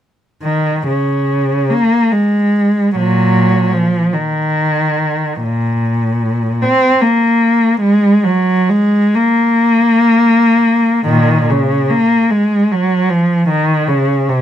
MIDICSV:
0, 0, Header, 1, 2, 480
1, 0, Start_track
1, 0, Key_signature, -5, "minor"
1, 0, Tempo, 857143
1, 246, Time_signature, 6, 3, 24, 8
1, 1198, Tempo, 798935
1, 2638, Tempo, 892857
1, 3118, Tempo, 821918
1, 3598, Tempo, 782269
1, 4558, Tempo, 879765
1, 5038, Tempo, 1029160
1, 5518, Tempo, 1357466
1, 5998, Tempo, 826446
1, 6958, Tempo, 783290
1, 7988, End_track
2, 0, Start_track
2, 0, Title_t, "Cello"
2, 0, Program_c, 0, 42
2, 241, Note_on_c, 0, 51, 39
2, 470, Note_off_c, 0, 51, 0
2, 491, Note_on_c, 0, 49, 34
2, 954, Note_on_c, 0, 58, 43
2, 962, Note_off_c, 0, 49, 0
2, 1187, Note_on_c, 0, 56, 38
2, 1194, Note_off_c, 0, 58, 0
2, 1686, Note_off_c, 0, 56, 0
2, 1692, Note_on_c, 0, 54, 42
2, 1694, Note_on_c, 0, 46, 37
2, 2134, Note_off_c, 0, 46, 0
2, 2148, Note_off_c, 0, 54, 0
2, 2151, Note_on_c, 0, 53, 37
2, 2390, Note_off_c, 0, 53, 0
2, 2398, Note_on_c, 0, 51, 38
2, 3120, Note_on_c, 0, 46, 37
2, 3121, Note_off_c, 0, 51, 0
2, 3819, Note_off_c, 0, 46, 0
2, 3829, Note_on_c, 0, 60, 50
2, 4064, Note_off_c, 0, 60, 0
2, 4065, Note_on_c, 0, 58, 39
2, 4552, Note_on_c, 0, 56, 47
2, 4558, Note_off_c, 0, 58, 0
2, 4784, Note_off_c, 0, 56, 0
2, 4789, Note_on_c, 0, 54, 46
2, 5035, Note_on_c, 0, 56, 46
2, 5037, Note_off_c, 0, 54, 0
2, 5251, Note_on_c, 0, 58, 52
2, 5259, Note_off_c, 0, 56, 0
2, 5991, Note_on_c, 0, 46, 37
2, 5992, Note_on_c, 0, 51, 45
2, 5995, Note_off_c, 0, 58, 0
2, 6221, Note_off_c, 0, 46, 0
2, 6221, Note_off_c, 0, 51, 0
2, 6240, Note_on_c, 0, 49, 37
2, 6473, Note_on_c, 0, 58, 43
2, 6481, Note_off_c, 0, 49, 0
2, 6709, Note_on_c, 0, 56, 40
2, 6717, Note_off_c, 0, 58, 0
2, 6950, Note_on_c, 0, 54, 45
2, 6953, Note_off_c, 0, 56, 0
2, 7179, Note_on_c, 0, 53, 42
2, 7198, Note_off_c, 0, 54, 0
2, 7420, Note_on_c, 0, 51, 45
2, 7430, Note_off_c, 0, 53, 0
2, 7661, Note_on_c, 0, 49, 44
2, 7664, Note_off_c, 0, 51, 0
2, 7908, Note_on_c, 0, 48, 41
2, 7909, Note_off_c, 0, 49, 0
2, 7988, Note_off_c, 0, 48, 0
2, 7988, End_track
0, 0, End_of_file